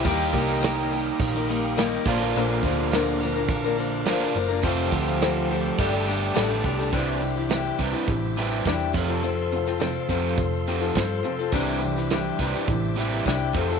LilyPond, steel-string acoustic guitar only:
\new Staff \with { instrumentName = "Steel-string acoustic guitar" } { \time 4/4 \key bes \lydian \tempo 4 = 104 <ees g bes ees' g'>8 <g bes ees' g'>8 <ees g bes ees' g'>8 <g bes ees' g'>8. <bes ees' g'>16 <g bes ees' g'>8 <ees g bes ees' g'>8 <f bes d' bes'>16 <f bes d' bes'>16 | <bes, d f bes d' bes'>8 <f bes d' bes'>8 <bes, d f bes d' bes'>8 <f bes d' bes'>16 <f bes d' bes'>8 <f bes d' bes'>16 <f bes d' bes'>8 <bes, d f bes d' bes'>16 <f bes d' bes'>16 <f bes d' bes'>16 <f bes d' bes'>16 | <f c' g' a'>8 <f c' g' a'>8 <f c' g' a'>8 <f c' g' a'>16 <c' g' a'>16 <g, d g d' g' a'>16 <g d' g' a'>16 <g d' g' a'>8 <g, d g d' g' a'>16 <g d' g' a'>16 <g d' g' a'>16 <g d' g' a'>16 | \key c \major <c g d' e' g'>8. <d' e' g'>16 <c g d' e' g'>8 <g d' e' g'>16 <d' e' g'>8. <g d' e' g'>8 <c g d' e' g'>8 <f c' f' a'>16 <c' f' a'>16 |
<f c' f' a'>8. <c' f' a'>16 <f c' f' a'>8 <f c' f' a'>4 <f c' f' a'>16 <c' f' a'>16 <f c' f' a'>8 <f c' f' a'>16 <c' f' a'>16 | <c g d' e' g'>8. <d' e' g'>16 <c g d' e' g'>8 <g d' e' g'>16 <d' e' g'>8. <g d' e' g'>8 <c g d' e' g'>8 <f c' f' a'>16 <c' f' a'>16 | }